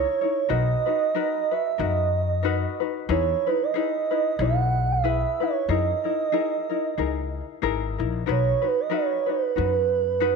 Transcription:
0.00 0.21 D#4 medium
0.00 0.21 E4 medium
0.00 0.21 A#4 medium
0.00 0.20 C#5 loud
0.00 0.49 C#5 loud
0.21 0.48 D#4 soft
0.21 0.49 E4 soft
0.21 0.49 C#5 soft
0.49 0.73 B1 medium
0.49 0.85 D#4 medium
0.49 0.85 F#4 medium
0.49 0.85 A#4 medium
0.49 0.85 B4 medium
0.49 1.53 D#5 loud
0.86 1.14 D#4 soft
0.86 1.14 F#4 soft
0.86 1.14 B4 soft
1.15 1.51 D#4 medium
1.15 1.51 F#4 medium
1.15 1.50 A#4 medium
1.15 1.50 B4 medium
1.51 1.79 F#4 soft
1.51 1.79 B4 medium
1.51 1.81 E5 loud
1.78 2.63 F#2 medium
1.78 2.44 D#4 medium
1.78 2.43 F#4 medium
1.78 2.42 A#4 medium
1.78 2.44 B4 medium
1.78 2.80 D#5 medium
2.43 2.80 D#4 medium
2.43 2.80 F#4 medium
2.43 2.79 A#4 medium
2.43 2.79 B4 medium
2.80 3.08 D#4 soft
2.80 3.09 F#4 soft
2.80 3.08 B4 medium
3.09 3.32 E2 loud
3.09 3.45 D#4 medium
3.09 3.45 E4 medium
3.09 3.45 G#4 medium
3.09 3.45 B4 medium
3.09 3.49 C#5 medium
3.47 3.74 D#4 soft
3.47 3.74 E4 soft
3.47 3.74 B4 medium
3.47 3.64 B4 medium
3.63 3.75 D#5 medium
3.74 4.11 D#4 medium
3.74 4.10 E4 medium
3.74 4.10 G#4 medium
3.74 4.09 B4 medium
3.74 4.44 D#5 loud
4.11 4.38 D#4 soft
4.11 4.39 E4 soft
4.11 4.38 B4 medium
4.39 5.23 B1 medium
4.39 5.04 D#4 medium
4.39 5.03 E4 medium
4.39 5.04 G#4 medium
4.39 5.04 B4 medium
4.39 4.94 F#5 loud
4.92 5.45 E5 medium
5.04 5.40 E4 medium
5.04 5.40 G#4 medium
5.04 5.39 B4 medium
5.40 5.68 D#4 soft
5.40 5.68 E4 soft
5.40 5.68 B4 medium
5.40 5.70 C#5 medium
5.69 5.92 F#2 medium
5.69 6.04 D#4 medium
5.69 6.04 E4 medium
5.69 6.04 G#4 medium
5.69 6.03 A#4 medium
5.69 7.59 D#5 loud
6.04 6.32 D#4 soft
6.04 6.32 E4 soft
6.04 6.32 A#4 soft
6.32 6.69 D#4 medium
6.32 6.69 E4 medium
6.32 6.69 G#4 medium
6.32 6.68 A#4 medium
6.70 6.97 D#4 soft
6.70 6.97 E4 medium
6.70 6.97 A#4 medium
6.97 7.40 C#2 medium
6.97 7.62 D#4 medium
6.97 7.61 E4 medium
6.97 7.61 G#4 medium
6.97 7.63 A#4 medium
7.62 7.95 G#1 medium
7.62 7.99 D#4 medium
7.62 7.98 E4 medium
7.62 7.98 G#4 medium
7.62 7.97 A#4 loud
7.98 8.24 A#1 medium
7.98 8.26 D#4 soft
7.98 8.27 E4 soft
7.98 8.25 A#4 medium
8.26 8.52 B1 medium
8.26 8.62 D#4 medium
8.26 8.62 F#4 medium
8.26 8.63 A#4 medium
8.26 8.60 B4 medium
8.31 8.68 C#5 medium
8.62 8.89 D#4 soft
8.62 8.90 F#4 soft
8.62 8.90 B4 soft
8.67 8.82 B4 medium
8.80 8.95 D#5 medium
8.90 9.28 D#4 medium
8.90 9.26 F#4 medium
8.90 9.27 A#4 medium
8.90 9.25 B4 medium
8.94 9.32 C#5 medium
9.26 9.54 D#4 soft
9.26 9.55 F#4 soft
9.26 9.55 B4 soft
9.31 10.36 B4 loud
9.56 10.36 F#2 medium
9.56 10.20 D#4 medium
9.56 10.20 F#4 medium
9.56 10.20 B4 medium
10.20 10.36 D#4 medium
10.20 10.36 F#4 loud
10.20 10.36 B4 loud

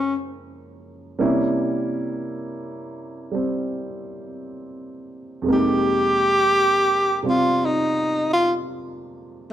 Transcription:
0.00 1.16 F#2 soft
0.00 1.17 C#3 soft
0.00 1.19 F3 soft
0.00 1.20 G#3 soft
0.00 1.18 A#3 soft
0.00 0.15 C#4 medium
0.00 1.22 D#4 soft
1.19 5.42 C3 medium
1.19 3.30 G3 medium
1.19 5.45 A#3 medium
1.19 5.45 C#4 medium
1.19 5.45 E4 medium
3.31 5.44 G3 soft
3.31 5.46 C4 medium
5.42 9.53 F2 medium
5.42 7.21 C3 soft
5.42 9.53 G#3 soft
5.48 9.53 A#3 medium
5.48 9.53 D#4 soft
5.52 9.53 G4 medium
5.52 7.23 G4 loud
7.23 9.53 C3 soft
7.23 9.53 G3 soft
7.23 9.53 C4 soft
7.23 9.53 F4 soft
7.29 7.67 F4 medium
7.65 8.33 D#4 medium
8.33 8.53 F4 medium

